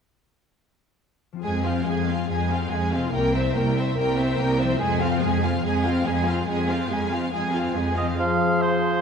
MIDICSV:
0, 0, Header, 1, 10, 480
1, 0, Start_track
1, 0, Key_signature, -4, "minor"
1, 0, Tempo, 431034
1, 1598, Time_signature, 4, 2, 24, 8
1, 2556, Tempo, 418994
1, 7836, Tempo, 428878
1, 10196, End_track
2, 0, Start_track
2, 0, Title_t, "Flute"
2, 0, Program_c, 0, 73
2, 9281, Note_on_c, 0, 84, 44
2, 10196, Note_off_c, 0, 84, 0
2, 10196, End_track
3, 0, Start_track
3, 0, Title_t, "Violin section"
3, 0, Program_c, 1, 48
3, 1606, Note_on_c, 1, 80, 30
3, 1826, Note_off_c, 1, 80, 0
3, 1838, Note_on_c, 1, 77, 28
3, 2079, Note_off_c, 1, 77, 0
3, 2087, Note_on_c, 1, 80, 29
3, 2323, Note_off_c, 1, 80, 0
3, 2327, Note_on_c, 1, 77, 29
3, 2560, Note_off_c, 1, 77, 0
3, 2565, Note_on_c, 1, 80, 28
3, 2786, Note_off_c, 1, 80, 0
3, 2804, Note_on_c, 1, 77, 31
3, 3040, Note_on_c, 1, 80, 33
3, 3042, Note_off_c, 1, 77, 0
3, 3283, Note_off_c, 1, 80, 0
3, 3290, Note_on_c, 1, 77, 32
3, 3523, Note_on_c, 1, 79, 37
3, 3530, Note_off_c, 1, 77, 0
3, 3750, Note_off_c, 1, 79, 0
3, 3777, Note_on_c, 1, 76, 33
3, 4007, Note_on_c, 1, 79, 35
3, 4014, Note_off_c, 1, 76, 0
3, 4249, Note_off_c, 1, 79, 0
3, 4254, Note_on_c, 1, 76, 36
3, 4491, Note_off_c, 1, 76, 0
3, 4494, Note_on_c, 1, 79, 40
3, 4713, Note_off_c, 1, 79, 0
3, 4726, Note_on_c, 1, 76, 40
3, 4965, Note_off_c, 1, 76, 0
3, 4967, Note_on_c, 1, 79, 43
3, 5205, Note_off_c, 1, 79, 0
3, 5209, Note_on_c, 1, 76, 38
3, 5445, Note_off_c, 1, 76, 0
3, 5447, Note_on_c, 1, 80, 41
3, 5666, Note_off_c, 1, 80, 0
3, 5689, Note_on_c, 1, 77, 38
3, 5922, Note_off_c, 1, 77, 0
3, 5946, Note_on_c, 1, 80, 43
3, 6167, Note_on_c, 1, 77, 42
3, 6169, Note_off_c, 1, 80, 0
3, 6399, Note_off_c, 1, 77, 0
3, 6409, Note_on_c, 1, 80, 40
3, 6625, Note_off_c, 1, 80, 0
3, 6655, Note_on_c, 1, 77, 38
3, 6878, Note_on_c, 1, 80, 43
3, 6884, Note_off_c, 1, 77, 0
3, 7115, Note_off_c, 1, 80, 0
3, 7118, Note_on_c, 1, 77, 37
3, 7354, Note_on_c, 1, 80, 39
3, 7356, Note_off_c, 1, 77, 0
3, 7578, Note_off_c, 1, 80, 0
3, 7599, Note_on_c, 1, 77, 36
3, 7839, Note_off_c, 1, 77, 0
3, 7842, Note_on_c, 1, 80, 39
3, 8072, Note_on_c, 1, 77, 37
3, 8076, Note_off_c, 1, 80, 0
3, 8310, Note_off_c, 1, 77, 0
3, 8315, Note_on_c, 1, 80, 32
3, 8533, Note_off_c, 1, 80, 0
3, 8547, Note_on_c, 1, 77, 33
3, 8778, Note_on_c, 1, 80, 30
3, 8787, Note_off_c, 1, 77, 0
3, 9028, Note_off_c, 1, 80, 0
3, 9031, Note_on_c, 1, 77, 27
3, 9276, Note_off_c, 1, 77, 0
3, 10196, End_track
4, 0, Start_track
4, 0, Title_t, "Oboe"
4, 0, Program_c, 2, 68
4, 9034, Note_on_c, 2, 75, 39
4, 9144, Note_off_c, 2, 75, 0
4, 9279, Note_on_c, 2, 77, 50
4, 9753, Note_on_c, 2, 72, 53
4, 9770, Note_off_c, 2, 77, 0
4, 10196, Note_off_c, 2, 72, 0
4, 10196, End_track
5, 0, Start_track
5, 0, Title_t, "Clarinet"
5, 0, Program_c, 3, 71
5, 9285, Note_on_c, 3, 68, 40
5, 10196, Note_off_c, 3, 68, 0
5, 10196, End_track
6, 0, Start_track
6, 0, Title_t, "Violin section"
6, 0, Program_c, 4, 48
6, 1600, Note_on_c, 4, 68, 31
6, 1823, Note_off_c, 4, 68, 0
6, 1837, Note_on_c, 4, 65, 27
6, 2079, Note_off_c, 4, 65, 0
6, 2080, Note_on_c, 4, 68, 29
6, 2318, Note_on_c, 4, 65, 29
6, 2319, Note_off_c, 4, 68, 0
6, 2554, Note_on_c, 4, 68, 31
6, 2556, Note_off_c, 4, 65, 0
6, 2780, Note_off_c, 4, 68, 0
6, 2803, Note_on_c, 4, 65, 31
6, 3042, Note_off_c, 4, 65, 0
6, 3044, Note_on_c, 4, 68, 31
6, 3279, Note_on_c, 4, 65, 33
6, 3285, Note_off_c, 4, 68, 0
6, 3523, Note_on_c, 4, 70, 35
6, 3524, Note_off_c, 4, 65, 0
6, 3749, Note_off_c, 4, 70, 0
6, 3759, Note_on_c, 4, 72, 33
6, 4005, Note_off_c, 4, 72, 0
6, 4005, Note_on_c, 4, 70, 34
6, 4246, Note_on_c, 4, 72, 35
6, 4248, Note_off_c, 4, 70, 0
6, 4488, Note_off_c, 4, 72, 0
6, 4489, Note_on_c, 4, 70, 39
6, 4710, Note_off_c, 4, 70, 0
6, 4721, Note_on_c, 4, 72, 39
6, 4962, Note_off_c, 4, 72, 0
6, 4965, Note_on_c, 4, 70, 42
6, 5198, Note_on_c, 4, 72, 40
6, 5204, Note_off_c, 4, 70, 0
6, 5437, Note_on_c, 4, 68, 45
6, 5439, Note_off_c, 4, 72, 0
6, 5661, Note_off_c, 4, 68, 0
6, 5675, Note_on_c, 4, 65, 40
6, 5915, Note_off_c, 4, 65, 0
6, 5918, Note_on_c, 4, 68, 40
6, 6152, Note_on_c, 4, 65, 41
6, 6155, Note_off_c, 4, 68, 0
6, 6387, Note_on_c, 4, 68, 44
6, 6392, Note_off_c, 4, 65, 0
6, 6613, Note_off_c, 4, 68, 0
6, 6631, Note_on_c, 4, 65, 40
6, 6870, Note_on_c, 4, 68, 40
6, 6872, Note_off_c, 4, 65, 0
6, 7110, Note_on_c, 4, 65, 35
6, 7111, Note_off_c, 4, 68, 0
6, 7346, Note_on_c, 4, 68, 42
6, 7352, Note_off_c, 4, 65, 0
6, 7574, Note_off_c, 4, 68, 0
6, 7581, Note_on_c, 4, 65, 37
6, 7830, Note_off_c, 4, 65, 0
6, 7832, Note_on_c, 4, 68, 31
6, 8071, Note_off_c, 4, 68, 0
6, 8071, Note_on_c, 4, 65, 34
6, 8309, Note_off_c, 4, 65, 0
6, 8314, Note_on_c, 4, 68, 37
6, 8532, Note_off_c, 4, 68, 0
6, 8547, Note_on_c, 4, 65, 31
6, 8787, Note_off_c, 4, 65, 0
6, 8789, Note_on_c, 4, 68, 29
6, 9032, Note_on_c, 4, 65, 26
6, 9033, Note_off_c, 4, 68, 0
6, 9277, Note_off_c, 4, 65, 0
6, 10196, End_track
7, 0, Start_track
7, 0, Title_t, "Harp"
7, 0, Program_c, 5, 46
7, 1476, Note_on_c, 5, 53, 26
7, 1498, Note_on_c, 5, 60, 25
7, 1520, Note_on_c, 5, 65, 26
7, 1549, Note_on_c, 5, 68, 24
7, 3320, Note_on_c, 5, 48, 33
7, 3362, Note_off_c, 5, 60, 0
7, 3375, Note_on_c, 5, 60, 30
7, 3425, Note_on_c, 5, 64, 32
7, 3479, Note_on_c, 5, 70, 29
7, 3494, Note_off_c, 5, 65, 0
7, 3520, Note_off_c, 5, 68, 0
7, 3545, Note_off_c, 5, 53, 0
7, 5233, Note_on_c, 5, 53, 43
7, 5271, Note_off_c, 5, 60, 0
7, 5285, Note_on_c, 5, 60, 33
7, 5336, Note_on_c, 5, 65, 37
7, 5358, Note_off_c, 5, 48, 0
7, 5387, Note_on_c, 5, 68, 32
7, 5411, Note_off_c, 5, 64, 0
7, 5438, Note_off_c, 5, 70, 0
7, 9057, Note_off_c, 5, 53, 0
7, 9071, Note_on_c, 5, 53, 31
7, 9105, Note_off_c, 5, 60, 0
7, 9118, Note_on_c, 5, 60, 30
7, 9156, Note_off_c, 5, 65, 0
7, 9169, Note_on_c, 5, 65, 30
7, 9210, Note_off_c, 5, 68, 0
7, 9223, Note_on_c, 5, 68, 30
7, 10196, Note_off_c, 5, 53, 0
7, 10196, Note_off_c, 5, 60, 0
7, 10196, Note_off_c, 5, 65, 0
7, 10196, Note_off_c, 5, 68, 0
7, 10196, End_track
8, 0, Start_track
8, 0, Title_t, "Viola section"
8, 0, Program_c, 6, 48
8, 1600, Note_on_c, 6, 56, 28
8, 1823, Note_off_c, 6, 56, 0
8, 1836, Note_on_c, 6, 60, 31
8, 2078, Note_off_c, 6, 60, 0
8, 2078, Note_on_c, 6, 56, 28
8, 2318, Note_off_c, 6, 56, 0
8, 2320, Note_on_c, 6, 60, 26
8, 2557, Note_off_c, 6, 60, 0
8, 2559, Note_on_c, 6, 56, 32
8, 2783, Note_off_c, 6, 56, 0
8, 2800, Note_on_c, 6, 60, 31
8, 3039, Note_on_c, 6, 56, 34
8, 3041, Note_off_c, 6, 60, 0
8, 3282, Note_off_c, 6, 56, 0
8, 3288, Note_on_c, 6, 60, 31
8, 3525, Note_on_c, 6, 58, 39
8, 3529, Note_off_c, 6, 60, 0
8, 3751, Note_off_c, 6, 58, 0
8, 3767, Note_on_c, 6, 60, 36
8, 4002, Note_on_c, 6, 58, 32
8, 4009, Note_off_c, 6, 60, 0
8, 4244, Note_on_c, 6, 60, 33
8, 4246, Note_off_c, 6, 58, 0
8, 4486, Note_off_c, 6, 60, 0
8, 4488, Note_on_c, 6, 58, 40
8, 4710, Note_off_c, 6, 58, 0
8, 4723, Note_on_c, 6, 60, 37
8, 4962, Note_on_c, 6, 58, 40
8, 4963, Note_off_c, 6, 60, 0
8, 5200, Note_on_c, 6, 60, 43
8, 5202, Note_off_c, 6, 58, 0
8, 5440, Note_off_c, 6, 60, 0
8, 5446, Note_on_c, 6, 56, 46
8, 5666, Note_off_c, 6, 56, 0
8, 5681, Note_on_c, 6, 60, 40
8, 5917, Note_on_c, 6, 56, 43
8, 5918, Note_off_c, 6, 60, 0
8, 6154, Note_off_c, 6, 56, 0
8, 6155, Note_on_c, 6, 60, 37
8, 6393, Note_off_c, 6, 60, 0
8, 6394, Note_on_c, 6, 56, 45
8, 6616, Note_off_c, 6, 56, 0
8, 6631, Note_on_c, 6, 60, 44
8, 6868, Note_on_c, 6, 56, 41
8, 6872, Note_off_c, 6, 60, 0
8, 7110, Note_off_c, 6, 56, 0
8, 7113, Note_on_c, 6, 60, 41
8, 7349, Note_on_c, 6, 56, 40
8, 7354, Note_off_c, 6, 60, 0
8, 7576, Note_off_c, 6, 56, 0
8, 7594, Note_on_c, 6, 60, 40
8, 7836, Note_off_c, 6, 60, 0
8, 7837, Note_on_c, 6, 56, 35
8, 8074, Note_off_c, 6, 56, 0
8, 8075, Note_on_c, 6, 60, 33
8, 8311, Note_off_c, 6, 60, 0
8, 8315, Note_on_c, 6, 56, 33
8, 8533, Note_off_c, 6, 56, 0
8, 8548, Note_on_c, 6, 60, 32
8, 8784, Note_on_c, 6, 56, 31
8, 8787, Note_off_c, 6, 60, 0
8, 9031, Note_off_c, 6, 56, 0
8, 9035, Note_on_c, 6, 60, 31
8, 9278, Note_off_c, 6, 60, 0
8, 10196, End_track
9, 0, Start_track
9, 0, Title_t, "Bassoon"
9, 0, Program_c, 7, 70
9, 9278, Note_on_c, 7, 53, 47
9, 10196, Note_off_c, 7, 53, 0
9, 10196, End_track
10, 0, Start_track
10, 0, Title_t, "Cello section"
10, 0, Program_c, 8, 48
10, 1600, Note_on_c, 8, 41, 33
10, 2024, Note_off_c, 8, 41, 0
10, 2085, Note_on_c, 8, 41, 33
10, 2503, Note_off_c, 8, 41, 0
10, 2552, Note_on_c, 8, 41, 34
10, 2980, Note_off_c, 8, 41, 0
10, 3040, Note_on_c, 8, 41, 39
10, 3468, Note_off_c, 8, 41, 0
10, 3528, Note_on_c, 8, 36, 42
10, 3953, Note_off_c, 8, 36, 0
10, 4011, Note_on_c, 8, 36, 45
10, 4434, Note_off_c, 8, 36, 0
10, 4488, Note_on_c, 8, 36, 46
10, 4908, Note_off_c, 8, 36, 0
10, 4963, Note_on_c, 8, 36, 53
10, 5385, Note_off_c, 8, 36, 0
10, 5445, Note_on_c, 8, 41, 52
10, 5864, Note_off_c, 8, 41, 0
10, 5921, Note_on_c, 8, 41, 49
10, 6338, Note_off_c, 8, 41, 0
10, 6391, Note_on_c, 8, 41, 49
10, 6815, Note_off_c, 8, 41, 0
10, 6876, Note_on_c, 8, 41, 49
10, 7298, Note_off_c, 8, 41, 0
10, 7351, Note_on_c, 8, 41, 50
10, 7778, Note_off_c, 8, 41, 0
10, 7833, Note_on_c, 8, 41, 41
10, 8253, Note_off_c, 8, 41, 0
10, 8305, Note_on_c, 8, 41, 42
10, 8727, Note_off_c, 8, 41, 0
10, 8784, Note_on_c, 8, 41, 37
10, 9218, Note_off_c, 8, 41, 0
10, 10196, End_track
0, 0, End_of_file